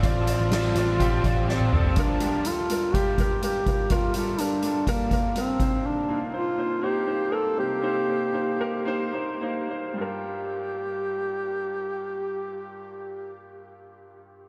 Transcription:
<<
  \new Staff \with { instrumentName = "Duduk" } { \time 4/4 \key g \minor \tempo 4 = 122 f'2. c'4 | d'4 f'4 g'4 g'4 | f'8 f'8 d'4 bes4 c'4 | d'4 f'4 g'4 a'8 g'8~ |
g'2. r4 | g'1~ | g'1 | }
  \new Staff \with { instrumentName = "Upright piano" } { \time 4/4 \key g \minor <c' f' d''>8 <c' f' d''>8 <c' f' d''>8 <c' f' d''>8 <c' f' g'>8 <c' f' d''>8 <c' f' d''>8 <c' f' a'>8 | <g f' bes'>8 <g f' g'>8 <g f' a'>8 <g f' bes'>8 <g f' g'>8 <g f' bes'>8 <g f' bes'>8 <g f' bes'>8 | <g f' bes'>8 <g f' a'>8 <g f' bes'>8 <g f' a'>8 <g f' bes'>8 <g f' bes'>8 <g f' bes'>8 <bes ees' c''>8~ | <bes ees' c''>8 <bes ees' f'>8 <bes ees' c''>8 <bes ees' c''>8 <bes ees' c''>8 <bes ees' c''>8 <bes ees' bes'>8 <bes ees' c''>8 |
<bes ees' c''>8 <bes ees' c''>8 <bes ees' c''>8 <bes ees' bes'>8 <bes ees' c''>8 <bes ees' c''>8 <bes ees' c''>8 <bes ees' c''>8 | <g f' bes'>1~ | <g f' bes'>1 | }
  \new Staff \with { instrumentName = "Upright piano" } { \clef bass \time 4/4 \key g \minor a,4 r2. | <g,, g,>1 | <g,, g,>2.~ <g,, g,>8 <c, c>8~ | <c, c>2.~ <c, c>8 <c, c>8~ |
<c, c>2.~ <c, c>8 r8 | g,1~ | g,1 | }
  \new Staff \with { instrumentName = "Overdriven electric guitar" } { \time 4/4 \key g \minor <a, d f c' d' a'>4 <f c' d' a'>8 <f c' d' a'>8 <a, d f c' d' a'>4 <f c' d' a'>4 | r1 | r1 | r1 |
r1 | r1 | r1 | }
  \new Staff \with { instrumentName = "Picked electric bass" } { \clef bass \time 4/4 \key g \minor a,,8. a,,8. a,,4 a,,4 f,,8 | r1 | r1 | r1 |
r1 | r1 | r1 | }
  \new DrumStaff \with { instrumentName = "Drums" } \drummode { \time 4/4 <hh bd>8 hh8 <hh sn>8 <hh sn>8 <hh bd>8 <hh bd>8 sn16 tommh16 toml16 tomfh16 | <hh bd>8 hh8 hh8 hh8 <hh bd>8 <hh bd>8 hh8 <hh bd>8 | <hh bd>8 hh8 hh8 hh8 <hh bd>8 <hh bd>8 hh8 <hh bd>8 | r4 r4 r4 r4 |
r4 r4 r4 r4 | r4 r4 r4 r4 | r4 r4 r4 r4 | }
>>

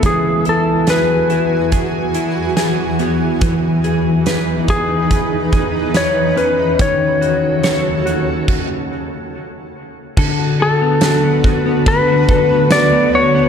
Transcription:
<<
  \new Staff \with { instrumentName = "Electric slide guitar" } { \time 4/4 \key cis \minor \tempo 4 = 71 gis'8 a'8 b'4 r2 | r4. gis'4. cis''8 b'8 | cis''2 r2 | \key d \lydian r8 a'4. b'4 d''8 cis''8 | }
  \new Staff \with { instrumentName = "Clean electric guitar" } { \time 4/4 \key cis \minor e8 e'8 gis'8 e'8 gis'8 e'8 gis'8 b8 | e8 gis'8 b'8 gis'8 b'8 gis'8 b'8 cis'8 | dis8 fis'8 cis''8 fis'8 r2 | \key d \lydian <d a'>16 fis'16 a'16 b16 fis'16 b16 fis'16 b16 <d a'>16 fis'16 a'16 b16 fis'16 b16 fis'16 b16 | }
  \new Staff \with { instrumentName = "Ambient pad" } { \time 4/4 \key cis \minor << { <fis' gis''>1 | <dis' b'>1 | <fis' a'>2 r2 | \key d \lydian <fis' b'>1 | } \\ { <e, e>1~ | <e, e>1 | <dis, cis>2 r2 | <d, d>1 | } >> }
  \new DrumStaff \with { instrumentName = "Drums" } \drummode { \time 4/4 <hh bd>8 hh8 <hh sn>8 hh8 <hh bd>8 hh8 <hh sn>8 hh8 | <hh bd>8 hh8 <hh sn>8 <hh bd>8 <hh bd>8 <hh bd>8 <hh sn>8 hh8 | <hh bd>8 hh8 <hh sn>8 hh8 <cymc bd>4 r4 | <cymc bd>4 <cymr sn tamb>8 bd8 <bd cymr>8 bd8 <cymr sn tamb>4 | }
>>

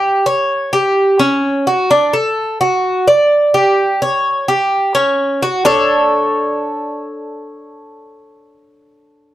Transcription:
\new Staff \with { instrumentName = "Cuban tres" } { \time 4/4 \key d \major \tempo 4 = 128 g'8 cis''4 g'4 cis'4 fis'8 | d'8 a'4 fis'4 d''4 g'8~ | g'8 cis''4 g'4 cis'4 fis'8 | <d' a' cis''>1~ |
<d' a' cis''>1 | }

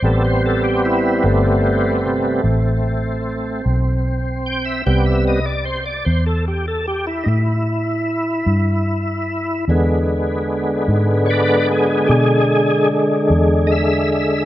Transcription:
<<
  \new Staff \with { instrumentName = "Tonewheel organ" } { \time 12/8 \key a \minor \tempo 4. = 50 a'16 c''16 a'16 g'16 e'8 a2. r4 g''16 e''16 | g''16 e''16 dis''16 d''16 c''16 d''16 c''16 a'16 g'16 a'16 g'16 e'16 <dis' e'>2. | r2 <b' cis'' d''>8 <b gis'>8 <g' gis'>4 r4 <dis'' e''>8 e''8 | }
  \new Staff \with { instrumentName = "Tonewheel organ" } { \clef bass \time 12/8 \key a \minor <g b c'>2~ <g b c'>8 <c g b>8 r2. | <c g b>8 r1 r4. | <d gis b>1. | }
  \new Staff \with { instrumentName = "Fingered electric bass" } { \clef bass \time 12/8 \key a \minor a,,4. g,,4. a,,4. b,,4. | c,4. e,4. a,4. g,4. | e,4. gis,4. b,4. e,4. | }
>>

